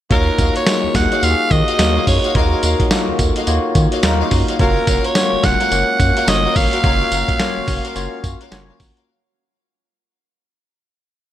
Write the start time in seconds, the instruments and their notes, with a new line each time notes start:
0.10 analog synth bass D#2, tine electric piano A#3 D#4 F4 F#4 C#5, string section F#4 C#5 D#5 F5, alto saxophone A#4, kick, closed hi-hat
0.38 analog synth bass D#2, string section F#4 C#5 D#5 F5, kick, closed hi-hat, tambourine
0.56 alto saxophone C#5, closed hi-hat
0.66 tine electric piano A#3 D#4 F4 F#4 G#4, snare, closed hi-hat, tambourine
0.84 analog synth bass D#2
0.95 analog synth bass D#2, alto saxophone F#5, kick, snare, closed hi-hat, tambourine
1.11 string section F#4 C#5 D#5 F5, closed hi-hat
1.22 analog synth bass D#2, tine electric piano A#3 D#4 F4 F#4 G4, alto saxophone F5, closed hi-hat, tambourine
1.30 tine electric piano G#4
1.51 analog synth bass D#3, alto saxophone D#5, kick, closed hi-hat, tambourine
1.68 string section F#4 C#5 D#5 F5, closed hi-hat
1.78 analog synth bass D#2, tine electric piano A#3 D#4 F4 F#4 C#5, snare, closed hi-hat, tambourine
1.96 string section F#4 C#5 D#5 F5
2.07 analog synth bass F#2, alto saxophone C#5, kick, open hi-hat, tambourine
2.24 string section F#4 C#5 D#5 F5, closed hi-hat
2.35 analog synth bass D#2, tine electric piano A#3 D#4 F4 F#4 C#5, string section F#4 C#5 D#5 F5, alto saxophone A#4, kick, closed hi-hat
2.63 analog synth bass D#2, string section F#4 C#5 D#5 F5, closed hi-hat, tambourine
2.80 kick, closed hi-hat
2.91 tine electric piano A#3 D#4 F4 F#4 A4, snare, closed hi-hat, tambourine
2.98 tine electric piano A#4
3.08 analog synth bass D#2
3.19 analog synth bass D#2, kick, closed hi-hat, tambourine
3.36 string section F#4 C#5 D#5 F5, closed hi-hat
3.47 analog synth bass D#2, tine electric piano A#3 D#4 F4 F#4 C#5, closed hi-hat, tambourine
3.75 analog synth bass D#3, kick, closed hi-hat, tambourine
3.92 string section F#4 C#5 D#5 F5, closed hi-hat
4.03 analog synth bass D#2, tine electric piano A#3 D#4 F4 F#4 A#4, snare, closed hi-hat, tambourine
4.20 string section F#4 C#5 D#5 F5
4.31 analog synth bass F#2, kick, open hi-hat, tambourine
4.48 string section F#4 C#5 D#5 F5, closed hi-hat
4.59 analog synth bass F#1, tine electric piano A#3 C#4 F4 F#4 C#5, string section F#4 A#4 C#5 F5, alto saxophone A#4, kick, closed hi-hat
4.87 analog synth bass F#1, string section F#4 A#4 C#5 F5, kick, closed hi-hat, tambourine
5.04 alto saxophone C#5, closed hi-hat
5.15 tine electric piano G#3 C#4 F4 F#4 C#5, snare, closed hi-hat, tambourine
5.21 tine electric piano A#3
5.33 analog synth bass F#1
5.44 analog synth bass F#1, alto saxophone F#5, kick, snare, closed hi-hat, tambourine
5.60 string section F#4 A#4 C#5 F5, closed hi-hat
5.71 analog synth bass F#1, tine electric piano A#3 C#4 F#4 C#5, closed hi-hat, tambourine
6.00 analog synth bass F#2, kick, closed hi-hat, tambourine
6.16 string section F#4 A#4 C#5 F5, closed hi-hat
6.27 analog synth bass F#1, tine electric piano A#3 C#4 F4 F#4 C#5, alto saxophone D#5, snare, closed hi-hat, tambourine
6.44 string section F#4 A#4 C#5 F5
6.56 analog synth bass G#1, alto saxophone F5, kick, open hi-hat, tambourine
6.72 string section F#4 A#4 C#5 F5, closed hi-hat
6.83 analog synth bass F#1, tine electric piano A#3 C#4 F4 F#4 C#5, string section F#4 A#4 C#5 F5, kick, closed hi-hat
7.12 analog synth bass F#1, string section F#4 A#4 C#5 F5, closed hi-hat, tambourine
7.28 kick, closed hi-hat
7.39 tine electric piano A#3 C#4 F4 F#4 C#5, snare, closed hi-hat, tambourine
7.57 analog synth bass F#1
7.68 analog synth bass F#1, kick, open hi-hat, tambourine
7.85 string section F#4 A#4 C#5 F5, closed hi-hat
7.95 analog synth bass F#1, tine electric piano A#3 C#4 F4 F#4 C#5, closed hi-hat, tambourine
8.24 analog synth bass F#2, kick, closed hi-hat, tambourine
8.41 string section F#4 A#4 C#5 F5, closed hi-hat
8.51 analog synth bass F#1, tine electric piano A#3 C#4 F4 F#4 C#5, snare, closed hi-hat, tambourine
8.69 string section F#4 A#4 C#5 F5
8.80 analog synth bass G#1, kick, open hi-hat, tambourine
8.97 string section F#4 A#4 C#5 F5, closed hi-hat